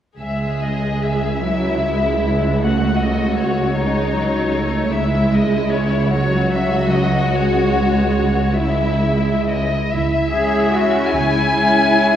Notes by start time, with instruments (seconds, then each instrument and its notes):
0.18 double bass section C#2, cello section C#2, viola section G#3, violin section G#4 E5
0.60 violin section D#5
1.02 violin section E5
1.43 viola section F#3, violin section E4
1.82 viola section G#3
2.22 viola section G#3
2.61 viola section A3, violin section F#4 F#5
3.00 violin section D#5
3.39 violin section C#5
3.77 viola section G#3, violin section D#4
4.16 viola section F#3
4.54 viola section A3
4.93 cello section C#2, double bass section C#2, viola section G#3, violin section E4 E5
5.32 violin section D#5
5.73 violin section C#5
6.12 viola section F#3, violin section F#4 C#5
6.51 violin section E5
6.91 violin section D#5
7.32 viola section G#3, violin section C#5
8.59 viola section G#3, violin section E4 E5
9.48 violin section D#5
9.92 double bass section C#2, cello section E4, violin section E5
10.33 viola section G#3 C#4, violin section E4 G#4, cello section G#4
10.74 cello section F#4
11.13 double bass section C#2, cello section E4, violin section G#5
11.55 viola section G#3 C#4, violin section E4 G#4